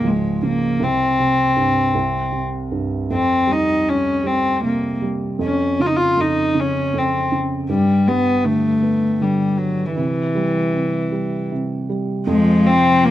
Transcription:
Already playing: C#2 G#2 C#3
0.04 F3 G#3
0.42 C#3 A#3
0.80 C2 C4
1.19 C3
1.56 G2
1.95 C2
2.32 C3
2.72 G2
3.10 F2 C4
3.47 G3
3.52 D#4
3.89 C#4
4.19 C#4
4.24 G3 C4
4.63 C3 A#3
5.02 G3
5.39 F2
5.43 C#4
5.80 C#3 F4
5.86 D#4
5.96 F4
6.17 F2 D#4
6.54 C#3
6.60 C#4
6.94 F2
6.98 C4
7.32 C#3
7.69 G2 G3
8.08 G3 B3
8.44 D3 A3
8.82 B3
9.20 D3 G3
9.58 F#3
9.95 C3 E3
10.35 G3
10.73 C3
11.12 G3
11.52 C3
11.90 G3
12.27 F2 C3 F3 G#3 C4 F4
12.66 C4
13.05 A#3

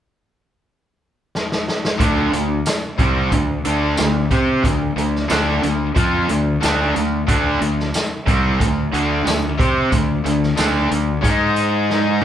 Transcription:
1.35 snare
1.52 snare
1.68 snare
1.85 snare
1.98 D2 D3 A3 D4, kick, closed hi-hat
2.32 D2 D3 A3, closed hi-hat
2.66 snare, closed hi-hat, tambourine
2.98 C2 C3 G3 C4, kick, closed hi-hat
3.31 D2 D3 A3, kick, closed hi-hat
3.65 D2 D3 A3 D4, closed hi-hat
3.97 D2 D3 A3, snare, closed hi-hat, tambourine
4.31 C3 C4 G4 C5, kick, closed hi-hat
4.63 D2 D3 A3, kick, closed hi-hat
4.96 D2 D3 A3, closed hi-hat
5.16 snare
5.28 D2 D3 A3 D4, snare, closed hi-hat, tambourine
5.63 D2 D3 A3, closed hi-hat
5.95 F2 F3 C4 F4, kick, closed hi-hat
6.28 D2 D3 A3, closed hi-hat
6.61 D2 D3 A3 D4, snare, closed hi-hat, tambourine
6.95 D2 D3 A3, closed hi-hat
7.27 D2 D3 A3 D4, kick, closed hi-hat
7.61 D2 D3 A3, closed hi-hat
7.80 snare
7.94 snare, closed hi-hat, tambourine
8.27 C2 C3 G3 C4, kick, closed hi-hat
8.60 D2 D3 A3, kick, closed hi-hat
8.93 D2 D3 A3 D4, closed hi-hat
9.25 D2 D3 A3, snare, closed hi-hat, tambourine
9.58 C3 C4 G4 C5, kick, closed hi-hat
9.91 D2 D3 A3, kick, closed hi-hat
10.24 D2 D3 A3, closed hi-hat
10.43 snare
10.56 D2 D3 A3 D4, snare, closed hi-hat, tambourine
10.89 D2 D3 A3, closed hi-hat
11.21 G#2 G#3 D#4 G#4, kick, closed hi-hat
11.56 closed hi-hat
11.90 snare
12.21 D3 A3, mid tom

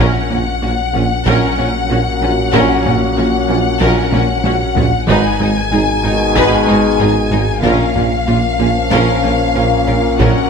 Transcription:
0.00 A#1 A#2 F#3 A#3 C#4 A#4 F#5
0.30 A#1 A#2 A#3 C#4, taiko low-mid
0.62 A#1 A#2 A#3 C#4 F#4
0.93 A#1 A#2 A#3 C#4
1.25 A#1 A#2 F#3 C#4 A#4, taiko
1.57 A#1 A#2 A#3 C#4
1.89 A#1 A#2 C#4 F#4
2.22 A#1 A#2 C#4 F#4
2.52 A#1 A#2 F#3 C#4 A#4, taiko
2.84 A#1 A#2 A#3 C#4, taiko low-mid
3.16 A#1 A#2 A#3 C#4 F#4
3.48 A#1 A#2 A#3 C#4
3.80 A#1 A#2 F#3 C#4 A#4, taiko
4.12 A#1 A#2 A#3 C#4, taiko high
4.44 A#1 A#2 C#4 F#4, taiko high
4.76 A#1 A#2 C#4 F#4, taiko low
5.08 G#1 G#2 B2 D#3 G#3 D#4 B4 G#5, taiko
5.40 G#1 G#2 G#3 D#4, taiko low-mid
5.71 G#1 G#2 G#3 D#4 G#4
6.03 G#1 G#2 G#3 D#4
6.35 G#1 G#2 G#3 D#4 B4, taiko
6.67 G#1 G#2 G#3 D#4
6.99 G#1 G#2 D#4 G#4
7.31 G#1 G#2 D#4 G#4
7.63 A#1 A#2 F3 A#3 C#4 A#4 F5, taiko
7.95 A#1 A#2 A#3 C#4 F4, taiko low-mid
8.28 A#1 A#2 A#3 C#4 F4
8.59 A#1 A#2 A#3 C#4 F4
8.91 A#1 A#2 A#3 C#4 A#4, taiko
9.23 A#1 A#2 A#3 C#4 F4
9.55 A#1 A#2 C#4 F4 A#4
9.87 A#1 A#2 C#4 A#4
10.18 A#1 A#2 F#3 C#4 A#4 F#5, taiko

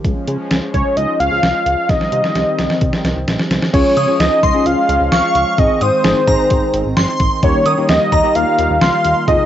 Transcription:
0.05 C#2 F3 G#3 C#4, kick, closed hi-hat
0.28 C#3, closed hi-hat
0.51 C#2, snare, closed hi-hat
0.74 C#2 C#5, kick, closed hi-hat
0.97 C#2 D#5, closed hi-hat
1.20 C#2 F5, closed hi-hat
1.31 C#2
1.43 C2, snare, closed hi-hat
1.66 C#2, closed hi-hat
1.89 C2 D#3 G3 C4 D#5, kick, snare, closed hi-hat
2.01 snare
2.12 C3, closed hi-hat
2.24 snare
2.35 C2, snare, closed hi-hat
2.58 C2, snare, closed hi-hat
2.70 snare
2.81 C2, kick, closed hi-hat
2.93 snare
3.04 C2, snare, closed hi-hat
3.16 C2
3.28 A#1, snare, closed hi-hat
3.39 snare
3.51 C2, snare, closed hi-hat
3.62 snare
3.73 C#2 F3 G#3 C#4 F4 G#4 C#5, kick, closed hi-hat, crash
3.97 C#3 D#6, closed hi-hat
4.08 C#4 F4 G#4
4.20 C#2 D#5, snare, closed hi-hat
4.43 C#2 C6, kick, closed hi-hat
4.54 C#4 F4 G#4
4.66 C#2 F5, closed hi-hat
4.89 C#2, closed hi-hat
5.01 C#2
5.12 C2 F5 C#6, snare, closed hi-hat
5.35 C#2, closed hi-hat
5.58 G#1 D#3 C4 D#4 G#4 D#5, kick, closed hi-hat
5.81 G#2 C5 D#6, closed hi-hat
6.04 G#1 C4 D#4 G#4, snare, closed hi-hat
6.28 G#1 C4 D#4 G#4 A#5, kick, closed hi-hat
6.50 G#1, kick, closed hi-hat
6.74 G#1, closed hi-hat
6.85 G#1
6.97 G1 C6, snare, closed hi-hat
7.20 G#1, kick, closed hi-hat
7.43 D#2 D#3 G3 A#3 D#4 G4 C#5, kick, closed hi-hat
7.66 D#3 D#6, closed hi-hat
7.78 A#3 D#4 G4
7.89 D#2 D#5, snare, closed hi-hat
8.12 D#2 A#5, kick, closed hi-hat
8.24 A#3 D#4 G4
8.35 D#2 F5, closed hi-hat
8.59 D#2, closed hi-hat
8.70 D#2
8.81 C#2 F5 C6, snare, closed hi-hat
9.04 D#2, closed hi-hat
9.28 F2 C3 F3 G#3 D#4 F4 G#4 D#5, kick, closed hi-hat

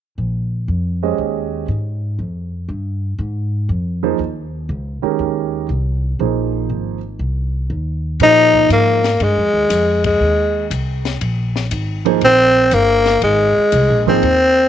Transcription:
0.18 A#1
0.68 F2
1.03 G#3 C#4 G4 C5 D#5
1.18 D#2
1.68 G#2
2.19 F2
2.68 G2
3.18 G#2
3.69 F2
4.03 F3 A#3 D#4 G#4 C5
4.19 D#2
4.69 C#2
5.02 D#3 G#3 C#4 G4 A#4, muted upright bass stroke
5.19 D#2
5.69 C2
6.19 A#1 F3 A#3 D#4 G#4 C5
6.70 G#1
7.19 C2
7.70 D#2
8.20 A#2 F3 A#3 D#4 G#4 C5, ride
8.54 kick
8.70 G#2 A#3, hi-hat pedal, ride
9.04 snare, ride
9.20 G2 G#3, ride
9.37 F2
9.53 D#2
9.70 F2, hi-hat pedal, ride
10.04 G#3, kick, ride
10.20 D#2
10.70 C2, hi-hat pedal, ride
11.05 snare, ride
11.21 A#1, ride
11.56 snare
11.71 G#1, hi-hat pedal, ride
12.05 F3 A#3 D#4 G#4 C5, ride
12.21 A#1 C4, ride
12.71 G1 A#3, hi-hat pedal, ride
13.06 snare, ride
13.22 G#1 G#3, ride
13.57 muted upright bass stroke
13.72 C2, hi-hat pedal, ride
13.90 A#1
14.06 G#1 F3 A#3 C4 D#4 G#4 C5
14.22 D#2, ride

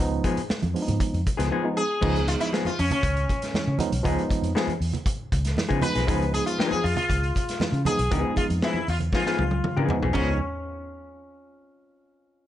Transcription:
Already playing: F3
0.00 C#2 G#3 B3 D#4
0.24 F3 B3 D#4 G#4, kick, closed hi-hat, muted conga, high conga
0.37 muted fingered electric bass stroke, closed hi-hat
0.49 muted fingered electric bass stroke, snare, muted conga
0.62 F2, closed hi-hat, high conga
0.74 F3 G#3 B3 D4, open hi-hat
0.82 D#4
0.88 G#2, closed hi-hat, low conga
1.00 kick, closed hi-hat, muted conga
1.14 F2, closed hi-hat
1.26 kick, closed hi-hat, muted conga
1.37 C#2 F3 B3 D#4 G#4, snare, closed hi-hat
1.51 F3 B3 D#4 G#4
1.63 F3 G#3 B3 D#4
1.77 G#4
2.01 C#2 D#3 F3 G#3 B3 D#4 G#4, kick, crash, muted conga, low conga
2.07 F3
2.16 closed hi-hat
2.28 F4, closed hi-hat, high conga
2.40 E4, closed hi-hat
2.53 F3 B3 D#4 G#4, snare, muted conga
2.65 F4, muted fingered electric bass stroke, closed hi-hat, high conga
2.79 F2 C#4, open hi-hat
2.91 C#4, closed hi-hat, low conga
3.03 C#2, kick, closed hi-hat, muted conga
3.17 closed hi-hat
3.29 kick, closed hi-hat, muted conga
3.42 snare, closed hi-hat
3.54 snare, high conga
3.67 C#3
3.78 F3 G#3 B3 D#4, closed hi-hat, muted conga, high conga, low conga
3.92 B1, closed hi-hat
4.03 C#2 F3 G#3 B3 D#4 G#4, kick, closed hi-hat, muted conga, low conga
4.18 closed hi-hat
4.29 kick, closed hi-hat, muted conga, high conga
4.42 F2, closed hi-hat
4.55 F3 B3 D#4 G#4, snare, muted conga
4.68 muted fingered electric bass stroke, closed hi-hat, high conga
4.81 E2, open hi-hat
4.93 closed hi-hat, low conga
5.06 kick, closed hi-hat, muted conga
5.32 C#2, kick, closed hi-hat, muted conga
5.45 snare, closed hi-hat
5.57 snare, muted conga, high conga
5.69 C#3 F3 B3 D#4 G#4, kick, closed hi-hat
5.81 F3 G#3 B3 D#4 B4, closed hi-hat, muted conga, high conga, low conga
5.95 B1 F3 B3 D#4 G#4, snare, closed hi-hat
6.07 C#2 E3 F3 G#3 B3 D#4 G#4, kick, closed hi-hat, low conga
6.13 F3
6.22 closed hi-hat
6.33 G#4, closed hi-hat, high conga
6.46 F4, closed hi-hat
6.58 F3 B3 D#4 G#4, snare, muted conga
6.71 G#4, muted fingered electric bass stroke, closed hi-hat, high conga
6.84 F2 F4, open hi-hat
6.96 F4, closed hi-hat, low conga
7.09 C#2, kick, closed hi-hat, muted conga
7.24 closed hi-hat
7.35 kick, closed hi-hat, muted conga
7.49 snare, closed hi-hat
7.60 snare, muted conga, high conga
7.72 C#3, closed hi-hat
7.85 F3 G#3 B3 D#4 G#4, closed hi-hat, high conga, low conga
7.99 B1, closed hi-hat
8.11 C#2 F3 G#3 B3 D#4 G#4, kick, closed hi-hat, muted conga, low conga
8.36 F4, kick, closed hi-hat, muted conga, high conga
8.50 F2, closed hi-hat
8.62 F3 B3 D#4 E4 G#4, snare, muted conga
8.74 high conga
8.87 E2 F4, open hi-hat, muted conga
8.99 closed hi-hat, low conga
9.12 F3 B3 D#4 F4 G#4, kick, snare, muted conga
9.26 F3 B3 D#4 G#4, snare
9.38 C#2, high tom, muted conga
9.51 high tom
9.64 mid tom, muted conga, high conga
9.77 C#3 F3 B3 D#4 G#4, mid tom
9.89 F3 G#3 B3 D#4, floor tom, muted conga, high conga, low conga
10.02 B1 F3 B3 D#4 G#4, floor tom
10.13 C#2 F3 G#3 B3 C#4 D#4 G#4, kick, crash, high conga

